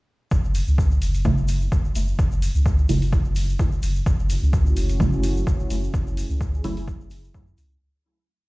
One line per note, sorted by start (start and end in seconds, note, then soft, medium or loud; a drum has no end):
0.31 0.62 F#1 loud
0.31 kick loud
0.31 shaker soft
0.44 shaker soft
0.55 open hi-hat medium
0.55 shaker medium
0.68 0.97 C#2 medium
0.68 shaker soft
0.78 kick loud
0.78 shaker medium
0.91 shaker soft
1.02 1.33 F#1 medium
1.02 open hi-hat medium
1.02 shaker medium
1.14 open hi-hat soft
1.14 shaker soft
1.24 1.35 C#3 medium
1.24 1.35 F#3 medium
1.24 1.35 A3 medium
1.24 1.35 E4 loud
1.24 kick loud
1.24 shaker soft
1.37 1.68 F#1 medium
1.37 shaker soft
1.48 open hi-hat medium
1.48 shaker medium
1.61 shaker soft
1.72 1.81 F#1 medium
1.72 kick loud
1.72 shaker soft
1.85 shaker soft
1.95 2.13 F#1 medium
1.95 open hi-hat medium
1.95 shaker medium
2.08 shaker soft
2.19 2.50 F#1 medium
2.19 kick loud
2.19 shaker soft
2.31 shaker soft
2.42 open hi-hat medium
2.42 shaker loud
2.55 2.85 C#2 medium
2.55 shaker soft
2.66 kick loud
2.66 shaker medium
2.78 shaker soft
2.89 3.20 F#1 medium
2.89 2.99 C#3 medium
2.89 2.99 F#3 medium
2.89 2.99 A3 medium
2.89 2.99 E4 loud
2.89 open hi-hat medium
2.89 shaker medium
3.02 open hi-hat soft
3.02 shaker soft
3.13 kick loud
3.13 shaker medium
3.25 3.55 F#1 medium
3.25 shaker soft
3.35 open hi-hat medium
3.35 shaker medium
3.49 shaker soft
3.59 3.69 F#1 medium
3.59 kick loud
3.59 shaker soft
3.72 shaker soft
3.83 4.01 F#1 medium
3.83 open hi-hat medium
3.83 shaker medium
3.95 shaker soft
4.06 4.37 F#1 medium
4.06 7.78 A3 medium
4.06 7.78 C#4 medium
4.06 7.78 E4 medium
4.06 5.92 F#4 medium
4.06 kick loud
4.06 shaker soft
4.19 shaker soft
4.30 open hi-hat medium
4.30 shaker medium
4.43 4.72 C#2 medium
4.43 shaker soft
4.53 kick loud
4.53 shaker medium
4.66 shaker soft
4.77 5.08 F#1 medium
4.77 open hi-hat medium
4.77 shaker loud
4.89 open hi-hat soft
4.89 shaker soft
5.00 5.10 C#3 medium
5.00 5.10 F#3 medium
5.00 5.10 A3 medium
5.00 5.10 E4 loud
5.00 kick loud
5.00 shaker medium
5.12 5.42 F#1 medium
5.12 shaker soft
5.23 open hi-hat medium
5.23 shaker loud
5.37 shaker soft
5.47 5.56 F#1 medium
5.47 kick loud
5.47 shaker medium
5.60 shaker soft
5.70 5.88 F#1 medium
5.70 open hi-hat medium
5.70 shaker loud
5.83 shaker soft
5.94 6.25 F#1 loud
5.94 7.79 G#4 medium
5.94 kick loud
5.94 shaker soft
6.07 shaker soft
6.17 open hi-hat medium
6.17 shaker loud
6.30 6.60 C#2 medium
6.30 shaker soft
6.41 kick loud
6.41 shaker medium
6.54 shaker soft
6.64 6.95 F#1 medium
6.64 6.74 C#3 medium
6.64 6.74 F#3 medium
6.64 6.74 A3 medium
6.64 6.74 E4 loud
6.64 open hi-hat medium
6.64 shaker medium
6.77 open hi-hat soft
6.77 shaker soft
6.88 kick loud
6.88 shaker medium
7.00 7.30 F#1 medium
7.00 shaker soft
7.10 open hi-hat medium
7.10 shaker loud
7.24 shaker soft
7.34 7.52 F#2 medium
7.34 kick loud
7.34 shaker medium
7.47 shaker soft
7.58 7.76 C#2 medium
7.58 open hi-hat medium
7.58 shaker loud
7.71 shaker soft